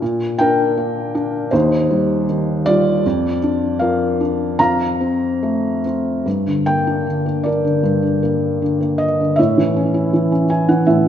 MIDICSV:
0, 0, Header, 1, 2, 480
1, 0, Start_track
1, 0, Tempo, 757576
1, 12, Time_signature, 4, 2, 24, 8
1, 2412, Tempo, 788436
1, 2892, Tempo, 833333
1, 3852, Tempo, 780234
1, 5772, Tempo, 738007
1, 6876, End_track
2, 0, Start_track
2, 0, Title_t, "Felt piano"
2, 0, Program_c, 0, 0
2, 0, Control_c, 0, 64, 127
2, 12, Note_on_c, 0, 46, 61
2, 19, Control_c, 0, 64, 0
2, 114, Control_c, 0, 64, 127
2, 244, Note_on_c, 0, 79, 90
2, 257, Note_on_c, 0, 62, 50
2, 258, Note_on_c, 0, 70, 71
2, 490, Note_on_c, 0, 58, 51
2, 718, Note_off_c, 0, 62, 0
2, 728, Note_on_c, 0, 62, 53
2, 934, Note_off_c, 0, 46, 0
2, 939, Note_off_c, 0, 70, 0
2, 948, Note_off_c, 0, 58, 0
2, 956, Note_off_c, 0, 62, 0
2, 958, Note_on_c, 0, 72, 70
2, 966, Control_c, 0, 64, 0
2, 966, Note_on_c, 0, 39, 62
2, 971, Note_on_c, 0, 63, 55
2, 979, Note_off_c, 0, 79, 0
2, 1075, Control_c, 0, 64, 127
2, 1208, Note_on_c, 0, 55, 51
2, 1420, Note_off_c, 0, 72, 0
2, 1426, Note_off_c, 0, 63, 0
2, 1453, Note_on_c, 0, 51, 48
2, 1684, Note_off_c, 0, 55, 0
2, 1684, Note_on_c, 0, 74, 103
2, 1693, Note_on_c, 0, 55, 49
2, 1697, Note_on_c, 0, 65, 69
2, 1909, Note_off_c, 0, 39, 0
2, 1920, Note_off_c, 0, 51, 0
2, 1925, Note_off_c, 0, 55, 0
2, 1939, Note_on_c, 0, 41, 60
2, 1940, Control_c, 0, 64, 0
2, 2057, Control_c, 0, 64, 127
2, 2142, Note_off_c, 0, 74, 0
2, 2148, Note_off_c, 0, 65, 0
2, 2175, Note_on_c, 0, 62, 48
2, 2403, Note_on_c, 0, 77, 68
2, 2414, Note_on_c, 0, 53, 43
2, 2416, Note_on_c, 0, 70, 50
2, 2646, Note_off_c, 0, 62, 0
2, 2655, Note_on_c, 0, 62, 45
2, 2869, Note_off_c, 0, 70, 0
2, 2871, Note_off_c, 0, 41, 0
2, 2878, Note_off_c, 0, 53, 0
2, 2888, Note_off_c, 0, 62, 0
2, 2889, Note_on_c, 0, 82, 89
2, 2891, Note_off_c, 0, 77, 0
2, 2891, Note_on_c, 0, 41, 52
2, 2897, Control_c, 0, 64, 0
2, 2900, Note_on_c, 0, 77, 63
2, 2993, Control_c, 0, 64, 127
2, 3128, Note_on_c, 0, 60, 42
2, 3372, Note_on_c, 0, 57, 43
2, 3591, Note_off_c, 0, 82, 0
2, 3597, Note_off_c, 0, 77, 0
2, 3610, Note_off_c, 0, 60, 0
2, 3618, Note_on_c, 0, 60, 44
2, 3828, Note_off_c, 0, 41, 0
2, 3837, Note_off_c, 0, 57, 0
2, 3846, Note_off_c, 0, 60, 0
2, 3850, Note_on_c, 0, 43, 54
2, 3859, Control_c, 0, 64, 0
2, 3966, Control_c, 0, 64, 127
2, 3981, Note_on_c, 0, 50, 45
2, 4098, Note_on_c, 0, 79, 83
2, 4099, Note_on_c, 0, 58, 44
2, 4226, Note_on_c, 0, 62, 41
2, 4338, Note_off_c, 0, 50, 0
2, 4347, Note_on_c, 0, 50, 40
2, 4455, Note_off_c, 0, 58, 0
2, 4465, Note_on_c, 0, 58, 39
2, 4574, Note_on_c, 0, 74, 59
2, 4575, Note_off_c, 0, 62, 0
2, 4584, Note_on_c, 0, 62, 43
2, 4588, Note_on_c, 0, 70, 49
2, 4592, Note_off_c, 0, 79, 0
2, 4694, Note_off_c, 0, 50, 0
2, 4703, Note_on_c, 0, 50, 41
2, 4810, Note_off_c, 0, 43, 0
2, 4819, Note_on_c, 0, 43, 55
2, 4928, Note_off_c, 0, 50, 0
2, 4938, Note_on_c, 0, 50, 38
2, 5052, Note_off_c, 0, 58, 0
2, 5061, Note_on_c, 0, 58, 44
2, 5293, Note_off_c, 0, 50, 0
2, 5302, Note_on_c, 0, 50, 43
2, 5408, Note_off_c, 0, 58, 0
2, 5417, Note_on_c, 0, 58, 38
2, 5515, Note_off_c, 0, 62, 0
2, 5517, Note_off_c, 0, 70, 0
2, 5524, Note_on_c, 0, 75, 71
2, 5564, Note_off_c, 0, 74, 0
2, 5653, Note_off_c, 0, 50, 0
2, 5662, Note_on_c, 0, 50, 44
2, 5749, Note_off_c, 0, 43, 0
2, 5757, Note_on_c, 0, 76, 72
2, 5761, Note_off_c, 0, 58, 0
2, 5772, Note_off_c, 0, 50, 0
2, 5772, Note_on_c, 0, 73, 52
2, 5773, Note_off_c, 0, 75, 0
2, 5778, Note_on_c, 0, 45, 60
2, 5779, Control_c, 0, 64, 0
2, 5897, Control_c, 0, 64, 127
2, 5898, Note_on_c, 0, 52, 51
2, 6020, Note_on_c, 0, 61, 48
2, 6135, Note_on_c, 0, 64, 49
2, 6251, Note_off_c, 0, 52, 0
2, 6261, Note_on_c, 0, 52, 51
2, 6371, Note_off_c, 0, 61, 0
2, 6381, Note_on_c, 0, 61, 46
2, 6459, Note_off_c, 0, 76, 0
2, 6489, Note_off_c, 0, 64, 0
2, 6497, Note_on_c, 0, 80, 59
2, 6498, Note_on_c, 0, 64, 50
2, 6606, Note_off_c, 0, 80, 0
2, 6610, Note_off_c, 0, 52, 0
2, 6620, Note_on_c, 0, 52, 51
2, 6620, Note_on_c, 0, 78, 65
2, 6706, Note_off_c, 0, 73, 0
2, 6728, Note_off_c, 0, 78, 0
2, 6730, Note_off_c, 0, 45, 0
2, 6736, Note_on_c, 0, 76, 62
2, 6740, Note_on_c, 0, 45, 61
2, 6856, Note_off_c, 0, 52, 0
2, 6876, Note_off_c, 0, 45, 0
2, 6876, Note_off_c, 0, 61, 0
2, 6876, Note_off_c, 0, 64, 0
2, 6876, Note_off_c, 0, 76, 0
2, 6876, End_track
0, 0, End_of_file